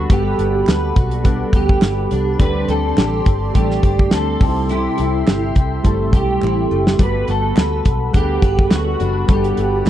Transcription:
Already playing: synth keys G3 A#3 B3 F#4 G4 A4 F#5, steel-string acoustic guitar G3 D4 F#4 B4, clean electric guitar F#4, analog synth pad A4 F#5 B5
0.09 fingered electric bass G1, synth keys G3 B3 F#4 A4, steel-string acoustic guitar G3 B4, clean electric guitar G4, kick, closed hi-hat
0.37 fingered electric bass G1, synth keys G3 B3 A4 F#5, closed hi-hat
0.67 fingered electric bass D2, steel-string acoustic guitar B4, snare, clap, closed hi-hat
0.96 fingered electric bass B1, steel-string acoustic guitar F#4, kick, closed hi-hat
1.11 closed hi-hat
1.24 synth keys G3 B3 A4 F#5, steel-string acoustic guitar D4, kick, closed hi-hat
1.53 fingered electric bass D2, clean electric guitar G4, steel-string acoustic guitar B4, kick, closed hi-hat
1.69 kick
1.82 fingered electric bass G1, snare, clap, closed hi-hat
2.11 fingered electric bass C2, steel-string acoustic guitar D4, closed hi-hat
2.38 fingered electric bass D2, steel-string acoustic guitar D3 G4, synth keys G3 C4 D4 A4, analog synth pad G4 D5 C6, kick, closed hi-hat
2.42 clean electric guitar B4
2.67 fingered electric bass D2, synth keys G3 C4 D4 A4, steel-string acoustic guitar C4, clean electric guitar A4, closed hi-hat
2.97 fingered electric bass A1, steel-string acoustic guitar G4, snare, clap, closed hi-hat
3.26 fingered electric bass G1, steel-string acoustic guitar C4, kick, closed hi-hat
3.53 fingered electric bass A1, synth keys G3 C4 D4 A4, steel-string acoustic guitar A3, clean electric guitar G4, kick, closed hi-hat
3.70 snare
3.83 fingered electric bass G1, steel-string acoustic guitar G4, kick, closed hi-hat
3.99 kick
4.11 fingered electric bass D2, steel-string acoustic guitar C4, clean electric guitar A4, snare, clap, closed hi-hat
4.39 fingered electric bass C2, steel-string acoustic guitar C3, synth keys G3 C4 D#4 A4, analog synth pad A4 E5, kick, open hi-hat
4.47 synth keys E4
4.69 steel-string acoustic guitar C3 G4, clean electric guitar E4, closed hi-hat
4.97 fingered electric bass C2, synth keys G3 C4 E4 A4, steel-string acoustic guitar E4, closed hi-hat
5.27 fingered electric bass G1, steel-string acoustic guitar G4, snare, clap, closed hi-hat
5.55 fingered electric bass C2, steel-string acoustic guitar E4, kick, closed hi-hat
5.83 fingered electric bass G1, synth keys G3 C4 E4 A4, steel-string acoustic guitar A3, kick, closed hi-hat
6.13 fingered electric bass B1, steel-string acoustic guitar G4, clean electric guitar G4, kick, closed hi-hat
6.42 fingered electric bass A1, steel-string acoustic guitar E4, clap
6.71 fingered electric bass F#1, steel-string acoustic guitar A3
6.87 snare
6.97 fingered electric bass G1, synth keys G3 B3 F#4 A4, steel-string acoustic guitar G3 B4, analog synth pad F#5 B5, kick, closed hi-hat
7.03 clean electric guitar B4
7.27 fingered electric bass G1, synth keys G3 B3 F#4 A4, steel-string acoustic guitar F#4, closed hi-hat
7.31 clean electric guitar A4
7.56 fingered electric bass D2, steel-string acoustic guitar B4, snare, clap, closed hi-hat
7.85 fingered electric bass B1, kick, closed hi-hat
8.11 fingered electric bass D2, synth keys G3 B3 G#4 F#5, steel-string acoustic guitar D4, kick, closed hi-hat
8.16 clean electric guitar G4
8.20 synth keys A4
8.42 fingered electric bass G1, steel-string acoustic guitar B4, kick, closed hi-hat
8.59 kick
8.71 fingered electric bass D2, steel-string acoustic guitar F#4, clean electric guitar F#4, snare, clap, closed hi-hat
9.00 fingered electric bass F#1, steel-string acoustic guitar D4, closed hi-hat
9.26 fingered electric bass G1, synth keys G3 B3 F#4 A4, steel-string acoustic guitar G3 B4, kick, closed hi-hat
9.32 clean electric guitar G4
9.44 closed hi-hat
9.54 fingered electric bass G1, synth keys G3 B3 A4 F#5, closed hi-hat
9.85 fingered electric bass D2, steel-string acoustic guitar B4

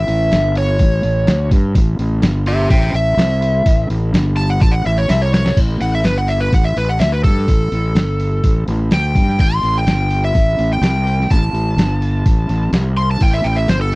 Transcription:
Already playing: electric slide guitar E5
0.08 fingered electric bass A1, open hi-hat
0.32 fingered electric bass G1, snare, open hi-hat
0.55 electric slide guitar C#5, open hi-hat
0.79 fingered electric bass A1, kick, open hi-hat
1.03 fingered electric bass A1, open hi-hat
1.27 fingered electric bass D2, snare, open hi-hat
1.51 fingered electric bass G2, kick, open hi-hat
1.75 fingered electric bass A1, kick, open hi-hat
1.99 fingered electric bass A1, open hi-hat
2.22 fingered electric bass G1, snare, open hi-hat
2.46 electric slide guitar G4 E5, open hi-hat
2.70 fingered electric bass A1, electric slide guitar E5 G5, kick, open hi-hat
2.93 fingered electric bass A1, electric slide guitar E5, open hi-hat
3.17 fingered electric bass C2, snare, open hi-hat
3.42 open hi-hat
3.66 fingered electric bass A1, kick, open hi-hat
3.90 fingered electric bass A1, open hi-hat
4.14 fingered electric bass G1, snare, open hi-hat
4.37 electric slide guitar A5, open hi-hat
4.50 electric slide guitar F#5
4.61 fingered electric bass A1, electric slide guitar A5, kick, open hi-hat
4.72 electric slide guitar F#5
4.85 fingered electric bass A1, electric slide guitar E5, open hi-hat
4.98 electric slide guitar C#5
5.09 fingered electric bass C2, electric slide guitar E5, snare, open hi-hat
5.22 electric slide guitar C#5
5.33 electric slide guitar C#5, snare, open hi-hat
5.46 snare
5.57 fingered electric bass A1, kick, open hi-hat, crash
5.81 fingered electric bass A1, electric slide guitar F#5, open hi-hat
5.95 electric slide guitar E5
6.04 fingered electric bass G1, electric slide guitar B4, snare, open hi-hat
6.18 electric slide guitar F#5
6.28 electric slide guitar E5, open hi-hat
6.40 electric slide guitar B4
6.53 fingered electric bass A1, electric slide guitar F#5, kick, open hi-hat
6.64 electric slide guitar E5
6.76 fingered electric bass A1, electric slide guitar B4, open hi-hat
6.89 electric slide guitar F#5
7.00 fingered electric bass D2, electric slide guitar E5, snare, open hi-hat
7.12 electric slide guitar B4
7.24 fingered electric bass G2, electric slide guitar A4, kick, open hi-hat
7.37 snare
7.48 fingered electric bass A1, kick, open hi-hat
7.72 fingered electric bass A1, open hi-hat
7.95 fingered electric bass G1, snare, open hi-hat
8.20 open hi-hat
8.44 fingered electric bass A1, kick, open hi-hat
8.68 fingered electric bass A1, open hi-hat
8.91 fingered electric bass D2, electric slide guitar G5, snare, open hi-hat
9.15 fingered electric bass G2, kick, open hi-hat
9.28 snare
9.39 fingered electric bass A1, electric slide guitar G5, kick, crash
9.54 electric slide guitar C6
9.63 fingered electric bass A1, open hi-hat
9.78 electric slide guitar G5
9.87 fingered electric bass G1, snare, open hi-hat
10.11 open hi-hat
10.25 electric slide guitar E5
10.35 fingered electric bass A1, kick, open hi-hat
10.59 fingered electric bass A1, open hi-hat
10.73 electric slide guitar G5
10.81 fingered electric bass C2, snare, open hi-hat
11.07 open hi-hat
11.20 snare
11.31 fingered electric bass A1, electric slide guitar A5, kick, open hi-hat
11.53 fingered electric bass A1, open hi-hat
11.77 fingered electric bass G1, snare, open hi-hat
12.02 open hi-hat
12.26 fingered electric bass A1, kick, open hi-hat
12.49 fingered electric bass A1, open hi-hat
12.72 fingered electric bass C2, snare, open hi-hat
12.97 electric slide guitar C6, open hi-hat
13.11 electric slide guitar A5
13.20 fingered electric bass A1, electric slide guitar G5, kick, crash
13.34 electric slide guitar E5
13.44 fingered electric bass A1, electric slide guitar G5, open hi-hat
13.56 electric slide guitar E5
13.68 fingered electric bass G1, electric slide guitar C5, snare, open hi-hat
13.81 electric slide guitar A4

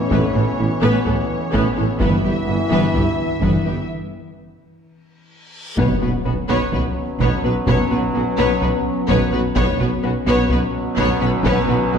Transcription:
Already playing: trombone section B2 E3, ambient pad E3 B3 C#4 B4, french horn section B3 C#4, violin section C#5
0.11 double bass section A1, tuba A1, cello section A2, synth arpeggio sound A3, viola section B3, violin section B4, taiko
0.35 double bass section A1, tuba A1, cello section A2, viola section B3, synth arpeggio sound C#4, violin section A4
0.58 double bass section A1, tuba A1, cello section A2, viola section B3, synth arpeggio sound E4, violin section E4
0.82 double bass section A1, tuba A1, cello section A2, synth arpeggio sound A3, viola section B3, violin section B4
1.05 double bass section A1, tuba A1, cello section A2, viola section B3, violin section A4, synth arpeggio sound A4, taiko low
1.53 double bass section A1, tuba A1, cello section A2, synth arpeggio sound A3, viola section B3, violin section B4, taiko
1.76 double bass section A1, tuba A1, cello section A2, viola section B3, synth arpeggio sound E4, violin section A4
2.00 double bass section G1, tuba G1, cello section G2, trombone section B2 E3, synth arpeggio sound E3, french horn section B3 E4, viola section B3, ambient pad E4, violin section B4 E5, taiko
2.23 double bass section G1, tuba G1, cello section G2, synth arpeggio sound G3, viola section B3, violin section G4
2.47 tuba G1, double bass section G1, cello section G2, synth arpeggio sound B3, viola section B3, violin section E4
2.70 double bass section G1, tuba G1, cello section G2, synth arpeggio sound E3, viola section B3, violin section B4
2.94 double bass section G1, tuba G1, cello section G2, viola section B3, synth arpeggio sound E4, violin section G4, taiko low
3.41 double bass section G1, tuba G1, cello section G2, synth arpeggio sound E3, viola section B3, violin section B4, taiko
3.65 double bass section G1, tuba G1, cello section G2, viola section B3, synth arpeggio sound B3, violin section G4
3.89 reverse cymbal
5.77 double bass section B1, tuba B1, trombone section B2 F#3, cello section B2, ambient pad F#3 B3 C#4 B4, viola section B3, french horn section B3 C#4, synth arpeggio sound B3, violin section B4 C#5, taiko, impact
6.01 double bass section B1, tuba B1, cello section B2, viola section B3, synth arpeggio sound F#4, violin section F#4 B4
6.25 double bass section B1, tuba B1, cello section B2, viola section B3, violin section C#4 F#4, synth arpeggio sound B4
6.49 double bass section B1, tuba B1, cello section B2, viola section B3, synth arpeggio sound B3, violin section B4 C#5
6.72 double bass section B1, tuba B1, cello section B2, viola section B3, violin section F#4 B4, synth arpeggio sound C#5, taiko low
7.20 double bass section B1, tuba B1, cello section B2, synth arpeggio sound B3, viola section B3, violin section B4 C#5, taiko
7.43 double bass section B1, tuba B1, cello section B2, viola section B3, violin section F#4 B4, synth arpeggio sound B4
7.67 double bass section B1, tuba B1, cello section B2, viola section B3, synth arpeggio sound B3, violin section B4 C#5, taiko
7.91 tuba B1, double bass section B1, cello section B2, viola section B3, violin section F#4 B4, synth arpeggio sound F#4
8.14 tuba B1, double bass section B1, cello section B2, viola section B3, violin section C#4 F#4, synth arpeggio sound B4
8.38 double bass section B1, tuba B1, cello section B2, viola section B3, synth arpeggio sound B3, violin section B4 C#5
8.61 tuba B1, double bass section B1, cello section B2, viola section B3, violin section F#4 B4, synth arpeggio sound C#5, taiko low
9.07 double bass section B1, tuba B1, cello section B2, viola section B3, synth arpeggio sound B3, violin section B4 C#5, taiko
9.32 tuba B1, double bass section B1, cello section B2, viola section B3, violin section F#4 B4, synth arpeggio sound B4
9.55 tuba B1, double bass section B1, trombone section B2 F#3, cello section B2, ambient pad F#3 B3 C#4 B4, viola section B3, french horn section B3 C#4, synth arpeggio sound B3, violin section B4 C#5, taiko
9.80 double bass section B1, tuba B1, cello section B2, viola section B3, violin section F#4 B4, synth arpeggio sound F#4
10.03 double bass section B1, tuba B1, cello section B2, viola section B3, violin section C#4 F#4, synth arpeggio sound B4
10.27 double bass section B1, tuba B1, cello section B2, viola section B3, synth arpeggio sound B3, violin section B4 C#5
10.50 double bass section B1, tuba B1, cello section B2, viola section B3, violin section F#4 B4, synth arpeggio sound C#5, taiko low
10.97 double bass section B1, tuba B1, cello section B2, viola section B3, synth arpeggio sound B3, violin section B4 C#5, taiko
11.21 tuba B1, double bass section B1, cello section B2, viola section B3, violin section F#4 B4, synth arpeggio sound B4
11.44 double bass section B1, tuba B1, cello section B2, viola section B3, synth arpeggio sound B3, violin section B4 C#5, taiko
11.68 double bass section B1, tuba B1, cello section B2, viola section B3, violin section F#4 B4, synth arpeggio sound F#4, taiko rim
11.92 double bass section B1, tuba B1, cello section B2, viola section B3, violin section C#4 F#4, synth arpeggio sound B4

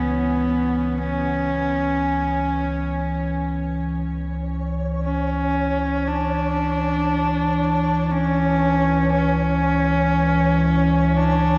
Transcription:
Already playing: synth drone C#2 E3, horsehead fiddle B3
0.98 horsehead fiddle C#4
4.04 synth drone C#2 E3, synth texture C#5
5.05 horsehead fiddle C#4
6.07 horsehead fiddle D4
8.11 horsehead fiddle C#4
9.13 horsehead fiddle C#4
11.17 horsehead fiddle D4

